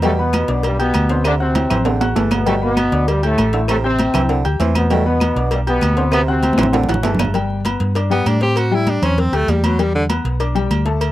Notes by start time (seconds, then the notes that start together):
Already playing: E2
0.02 A2 B2 G3 A3 G4 G5, cowbell, high conga, low agogo
0.18 B2 B3 B4 B5, high conga
0.33 cowbell, high conga, low agogo, claves
0.48 B1 D4 D5 D6, cowbell, high conga
0.63 G2 G3, cowbell, high conga, low agogo
0.79 B2 B3 G4 G5 G6, high conga, low agogo
0.94 D2, cowbell, high conga, low agogo, claves
1.09 D3 C4 C5 C6, cowbell
1.24 C3 D3 D4, cowbell, high conga, low agogo, claves
1.40 C3 C4 F#4 F#5 F#6, high conga
1.55 cowbell, high conga, high timbale, low agogo
1.70 A1 E3 C4 C5 C6, cowbell, high conga, low conga, low agogo, claves
1.85 D3, cowbell, high conga, low timbale
2.00 F#4 F#5 F#6, high conga, low timbale, low agogo
2.15 G1 E3 A3 A4 A5, cowbell, high conga, low timbale, low agogo
2.31 B2 B3, cowbell, high conga, low timbale, low agogo, claves
2.46 A2 B2 G3 A3 G4 G5, cowbell, low agogo
2.62 B2 B3 B4 B5, high conga
2.77 cowbell, high conga, low agogo, claves
2.92 D2 D4 D5 D6, cowbell, high conga
3.08 G2 G3, cowbell, high conga, low agogo
3.23 A2 A3 G4 G5 G6, high conga, low agogo
3.38 A1, cowbell, high conga, low agogo, claves
3.53 D3 E4 E5 E6, cowbell, high conga
3.68 A2 C3 A3, cowbell, high conga, low agogo, claves
3.84 C3 C4 G4 G5 G6, high conga
3.99 cowbell, high conga, low agogo
4.13 C2 E3 E4 E5 E6, cowbell, high conga, low conga, low agogo, claves
4.29 D3, cowbell, high conga
4.45 D2 G4 G5 G6, high conga, low agogo
4.59 E2 E3 C4 C5 C6, cowbell, high conga, low agogo
4.75 B2 B3, cowbell, high conga, low agogo, claves
4.90 A2 B2 G3 A3 G4 G5, cowbell, high conga, low agogo
5.06 B2 B3 B4 B5, high conga
5.20 cowbell, high conga, low agogo, claves
5.36 B1 D4 D5 D6, cowbell, high conga
5.51 G2 G3, cowbell, high conga, low agogo
5.67 B2 B3 G4 G5 G6, high conga, low agogo
5.81 D2, cowbell, high conga, low agogo, claves
5.96 D3 C4 C5 C6, cowbell, high conga
6.11 B2 C3 B3, cowbell, high conga, low agogo, claves
6.28 C3 C4 F#4 F#5 F#6, high conga
6.43 cowbell, high conga, low agogo
6.53 high conga
6.58 A1 E3 C4 C5 C6, cowbell, high bongo, high timbale, low agogo, claves
6.63 low conga
6.73 D3, cowbell, high bongo, high conga, high timbale
6.83 low conga
6.88 A1 F#4 F#5 F#6, low bongo, high timbale, low agogo
6.94 low conga
7.03 G1 E3 A3 A4 A5, cowbell, low bongo, low timbale, low agogo
7.15 low conga
7.19 cowbell, low bongo, low timbale, low agogo, claves
7.25 low conga
7.34 G3 G4 G5, cowbell, high conga, low agogo
7.50 high conga
7.65 B3 B4 B5, cowbell, high conga, low agogo
7.80 G2, cowbell, high conga
7.95 D4 D5 D6, cowbell, high conga, low agogo
8.10 G3 B3 G4 G5, low agogo
8.26 A2 D4, cowbell, high conga, low agogo
8.41 C4 G4 C5 C6, cowbell, high conga
8.56 F#4, cowbell, high conga, low agogo
8.71 G3 E4 G4 G5, high conga
8.87 D4, cowbell, high conga, low agogo
9.02 E2 C4 C#4 C5 C6, cowbell, high conga, low conga, low agogo
9.18 C4, cowbell, high conga, low conga
9.32 D2 A3 G4 G5 G6, high conga, low agogo
9.48 E2 G3, cowbell, high conga, low timbale, low agogo
9.63 F#3 B3 B4 B5, cowbell, high conga, low agogo
9.79 G3 G4 G5, cowbell, high conga, low agogo
9.94 D3, high conga
10.09 B3 B4 B5, cowbell, high conga, low agogo
10.25 B1, cowbell, high conga
10.40 D4 D5 D6, cowbell, high conga, low agogo
10.55 G3 G4 G5, high conga, low agogo
10.70 D2, cowbell, high conga, low agogo
10.85 A3 A4 A5, cowbell
11.01 cowbell, high conga, low agogo